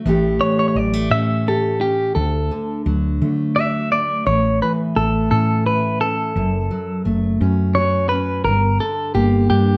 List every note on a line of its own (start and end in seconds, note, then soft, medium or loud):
0.00 0.07 A3 medium
0.05 0.39 A1 medium
0.05 2.16 A2 medium
0.05 0.40 E3 medium
0.05 0.76 A3 medium
0.05 1.46 G4 medium
0.41 2.12 E3 medium
0.41 0.58 C#5 medium
0.59 0.67 C#5 medium
0.68 0.77 C#5 medium
0.75 1.09 A1 medium
0.75 0.93 F#3 soft
0.75 1.11 D5 medium
0.93 2.16 A3 soft
1.11 2.12 A2 medium
1.11 1.80 C#4 medium
1.11 1.47 E5 loud
1.48 2.13 G4 medium
1.48 1.81 A4 medium
1.81 2.12 C#4 medium
1.81 2.15 G4 medium
2.15 4.26 D2 medium
2.15 2.49 D2 medium
2.15 2.81 A4 medium
2.51 4.26 D3 medium
2.86 3.19 D2 medium
2.86 4.26 F#3 medium
3.22 4.22 D3 medium
3.22 3.92 A3 medium
3.56 4.23 F#4 medium
3.56 3.91 E5 medium
3.92 4.98 A3 medium
3.92 4.26 D5 medium
4.26 4.59 A1 medium
4.26 6.36 A2 medium
4.26 4.59 C#5 medium
4.62 6.32 E3 medium
4.62 4.71 B4 medium
4.96 5.29 A1 medium
4.96 6.33 A3 soft
4.96 5.30 A4 medium
5.31 6.32 A2 loud
5.31 6.01 C#4 medium
5.31 5.66 A4 medium
5.66 6.32 E4 medium
5.66 6.00 B4 medium
6.01 6.32 C#4 medium
6.01 7.02 A4 medium
6.36 6.69 F#1 medium
6.36 8.41 F#2 medium
6.71 8.41 F#3 medium
7.05 7.39 F#1 medium
7.05 8.41 A3 medium
7.41 8.41 F#2 loud
7.41 8.10 C#4 medium
7.75 8.42 F#4 medium
7.75 8.09 C#5 medium
8.09 8.41 C#4 medium
8.09 8.42 B4 medium
8.45 8.78 G1 medium
8.45 9.77 G2 medium
8.45 8.77 A#4 medium
8.80 9.77 D3 medium
8.80 9.14 A4 medium
9.14 9.48 G1 medium
9.14 9.77 A#3 medium
9.14 9.47 G4 medium
9.50 9.77 G2 loud
9.50 9.77 D4 medium
9.50 9.77 G4 medium